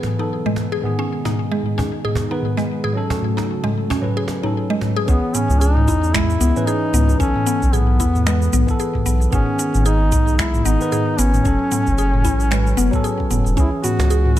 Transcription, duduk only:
5.08 B3
5.35 C#4
5.60 D#4
6.13 E4
6.66 D#4
7.20 C#4
7.74 B3
9.33 C#4
9.85 D#4
10.39 E4
10.66 D#4
11.18 C#4
13.58 E4
13.83 F#4

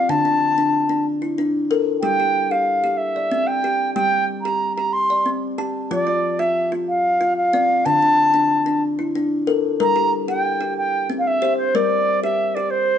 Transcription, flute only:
Already playing: F5
0.09 A5
2.01 G5
2.51 F5
2.97 E5
3.47 G5
3.94 G5
4.41 A#5
4.75 A#5
4.93 C6
5.92 D5
6.39 E5
6.88 F5
7.37 F5
7.85 A5
9.81 A#5
10.29 G5
10.78 G5
11.19 F5
11.27 E5
11.57 C5
11.75 D5
12.23 E5
12.55 D5
12.70 C5

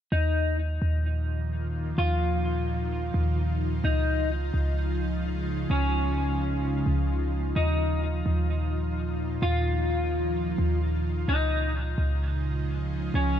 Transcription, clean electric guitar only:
0.12 D#4
1.98 F4
3.84 D#4
5.71 C#4
7.56 D#4
9.43 F4
11.29 D#4
13.15 C#4

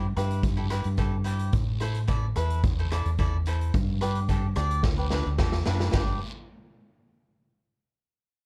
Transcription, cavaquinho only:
0.16 E4 G4 B4
0.57 E4 G4 A4
0.70 E4 G4 B4
0.98 E4 G4 A4
1.24 E4 G4 C5
1.81 E4 A4 C5
2.07 E4 A4 D5
2.37 E4 A4 B4
2.79 E4 A4 C5
2.92 E4 A4 D5
3.19 E4 A4 D5
3.47 E4 A4 C5
4.01 D4 G4 B4
4.28 D4 G4 A4
4.56 D4 G4 D5
4.98 D4 G4 B4
5.11 D4 G4 B4
5.38 D4 G4 A4
5.65 D4 G4 B4
5.93 D4 G4 B4

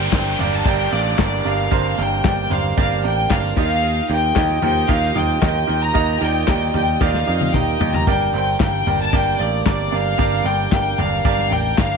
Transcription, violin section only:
Already playing: G5
0.15 G5
0.54 A5
0.68 G5
0.93 D5
1.21 D5
1.48 F5
2.00 G5
2.27 G5
2.53 F5
2.77 F5
3.05 G5
3.31 F5
3.58 F5
4.11 G5
4.64 G5
4.89 F5
5.17 G5
5.44 G5
5.82 A#5
6.23 G5
6.75 G5
7.03 F5
7.56 G5
7.95 A#5
8.08 G5
8.34 G5
8.61 G5
9.01 A5
9.14 G5
9.40 D5
9.67 D5
9.93 F5
10.45 G5
10.73 G5
10.99 F5
11.26 F5
11.52 G5
11.79 F5

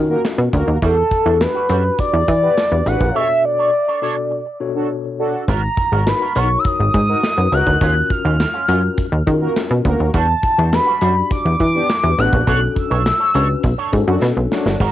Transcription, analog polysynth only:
0.09 A#3 F#4 A#4
0.53 A#3 F#4 A#4
2.42 B3 G4 B4
2.86 D4 F#4 B4
4.75 D4 F#4 A4
5.19 D4 F#4 A4
7.09 D#4 F#4 A#4
7.52 D#4 F#4 A#4
9.41 A#3 F#4 A#4
9.85 A#3 F#4 A#4
11.75 B3 D4 G4
12.18 B3 D4 F#4
14.07 F#3 D4 F#4
14.51 F#3 D4 F#4

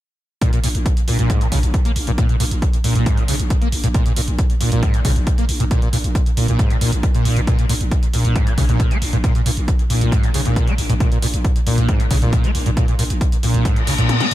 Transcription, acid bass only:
0.41 A#2
0.53 A#2
0.64 A#2
1.08 A#2
1.19 A#2
1.30 G#2
1.41 A#2
1.52 C#3
1.85 A#3
2.07 A#2
2.18 A#2
2.29 A#2
2.40 A#2
2.84 A#2
2.95 A#2
3.06 G#2
3.17 A#2
3.28 C#3
3.62 A#3
3.84 A#2
3.94 A#2
4.06 A#2
4.17 A#2
4.61 A#2
4.72 A#2
4.83 G#2
4.94 A#2
5.05 C#3
5.38 A#3
5.60 A#2
5.71 A#2
5.82 A#2
5.93 A#2
6.37 A#2
6.48 A#2
6.59 G#2
6.70 A#2
6.81 A#2
7.15 A#2
7.37 B2
7.47 A#2
7.59 A#2
7.69 A#2
8.13 A#2
8.36 G#2
8.47 A#2
8.58 C#3
8.69 A#2
8.91 A#3
9.13 A#2
9.24 A#2
9.35 A#2
9.46 A#2
9.90 A#2
10.12 G#2
10.23 A#2
10.34 C#3
10.45 A#2
10.67 A#3
10.90 A#2
11.00 A#2
11.12 A#2
11.22 A#2
11.67 A#2
11.89 G#2
12.00 A#2
12.11 C#3
12.22 A#2
12.44 A#3
12.66 A#2
12.77 A#2
12.88 A#2
12.99 A#2
13.43 A#2
13.65 G#2
13.76 A#2
13.87 C#3
13.98 A#2
14.20 A#3

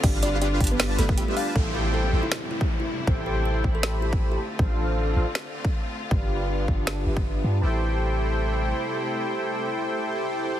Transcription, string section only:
Already playing: D3 F4
0.04 G3 B3
1.56 C3 G3 A3 E4
4.40 D3 C4 F4
6.11 D3 G3 B3
7.63 C3 G3 A3 E4

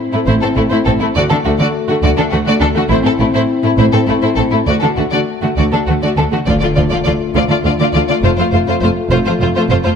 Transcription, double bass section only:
0.28 A1
0.57 A1
0.87 A1
1.16 D2
1.46 D2
2.04 D2
2.32 D2
2.62 D2
2.90 A1
3.19 A1
3.78 A1
4.08 A1
4.37 A1
4.67 D2
4.97 D2
5.58 D2
5.88 D2
6.17 D2
6.47 D2
6.76 D2
7.06 D2
7.35 D2
7.65 D2
7.94 D2
8.23 F1
8.52 F1
8.82 F1
9.11 F1
9.41 F1
9.70 F1

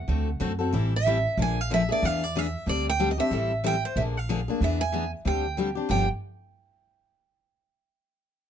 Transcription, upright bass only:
0.08 D2
0.41 F#2
0.73 A1
1.37 A#1
2.03 E2
2.67 D2
3.31 A1
3.96 A#1
4.61 E2
5.25 D2
5.90 G1

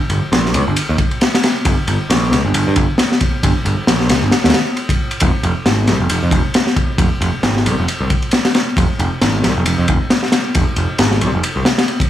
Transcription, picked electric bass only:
0.10 G1
0.23 muted picked electric bass stroke
0.32 A#1
0.54 C#2
0.67 G1
0.89 D#2
1.65 G1
1.88 G1
2.10 A#1
2.32 C#2
2.45 G1
2.54 G1
2.67 G2
2.76 G1
3.43 G1
3.65 G1
3.77 muted picked electric bass stroke
3.87 A#1
4.09 C#2
4.22 G1
4.45 D#2
5.22 F1
5.43 F1
5.66 G#1
5.88 C2
6.00 F1
6.10 F1
6.23 F2
6.31 F1
6.98 F1
7.21 F1
7.34 muted picked electric bass stroke
7.43 G#1
7.66 C2
7.79 F1
8.01 C2
8.77 F1
8.99 F1
9.22 G#1
9.44 C2
9.56 F1
9.66 F1
9.78 F2
9.89 F1
10.55 F1
10.76 F1
10.99 G#1
11.21 C2
11.34 F1
11.56 C2

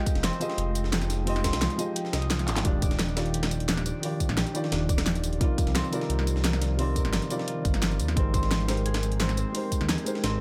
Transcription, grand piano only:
Already playing: F3 G#3 F4 G4 D#5
0.40 F3 F4 G4 G#4 D#5
1.25 F3 G#3 F4 G4
1.29 D#5
1.78 F3 F4 G4 G#4 D#5
2.63 D#3 F4 G4
2.67 D5
3.15 D#3 D#4 F4 G4 D5
4.01 D#3 F4 G4
4.05 D5
4.54 D#3 D#4 F4 G4 D5
5.38 C3 G3 D#4 F4 A#4
5.43 D5
5.91 C3 G3 D#4 F4 A#4 D5
6.76 C3 G3 D#4 F4 A#4
6.81 D5
7.29 C3 G3 D#4 F4 A#4 D5
8.14 G#3 D#4 G4 A#4
8.19 C5
8.67 G#3 D#4 G4 A#4 C5
9.52 G#3 D#4 G4 A#4
9.57 C5
10.05 G#3 D#4 G4 A#4 C5

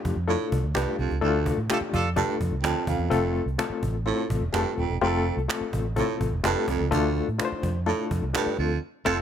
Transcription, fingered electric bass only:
0.05 F2
0.16 F2
0.52 C2
0.63 D2
0.76 C2
0.99 C2
1.11 C#2
1.22 D2
1.58 A2
1.81 muted fingered electric bass stroke
1.93 F2
2.41 F2
2.51 C2
2.63 D2
2.87 D#2
2.99 E2
3.12 F1
3.46 C2
3.70 muted fingered electric bass stroke
3.83 A1
4.30 A1
4.41 E1
4.53 F1
4.78 D#1
4.90 E1
5.01 F1
5.37 C2
5.61 muted fingered electric bass stroke
5.73 A1
6.21 A1
6.33 E1
6.44 F1
6.68 C2
6.81 C#2
6.92 D2
7.29 A2
7.52 muted fingered electric bass stroke
7.64 F2
8.11 F2
8.22 C2
8.46 muted fingered electric bass stroke
8.59 D2
9.06 F1

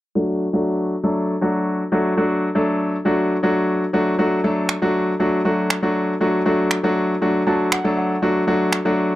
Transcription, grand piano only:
0.15 F#3 A3 D4 F#4
0.53 F#3 A3 D4 F#4
1.04 F#3 A3 D4 A4
1.41 F#3 A3 D4 F#4
1.92 F#3 A3 D4 F#4
2.17 F#3 A3 D4 F#4
2.55 F#3 A3 D4 A4
3.05 F#3 A3 D4 F#4
3.43 F#3 A3 D4 F#4
3.93 F#3 A3 D4 F#4
4.19 F#3 A3 D4 F#4
4.44 F#3 A3 D4 A4
4.82 F#3 A3 D4 F#4
5.20 F#3 A3 D4 F#4
5.45 F#3 A3 D4 F#4
5.82 F#3 A3 D4 F#4
6.21 F#3 A3 D4 F#4
6.46 F#3 A3 D4 F#4
6.83 F#3 A3 D4 F#4
7.21 F#3 A3 D4 F#4
7.47 F#3 A3 D4 F#4 A5
7.72 F#5
7.84 F#3 A3 D4 A4
7.97 F#5
8.22 F#3 A3 D4 F#4
8.47 F#3 A3 D4 F#4
8.85 F#3 A3 D4 F#4

